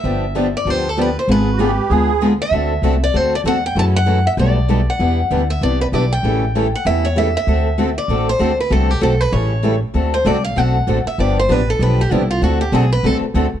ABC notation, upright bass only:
X:1
M:4/4
L:1/8
Q:"Swing" 1/4=194
K:Dmix
V:1 name="Upright bass" clef=bass
G,,,4 D,,4 | ^G,,,4 D,,4 | D,,2 C,,2 D,,2 E,,2 | F,,4 B,,,4 |
E,,2 D,,2 C,,2 B,,,2 | A,,,4 E,,4 | D,,4 A,,,2 D,,2 | C,,2 B,,,2 A,,,4 |
D,,2 C,,2 B,,,2 A,,, z | G,,,2 A,,,2 B,,,2 C,,2 | D,,2 B,,,2 C,, z D,, z |]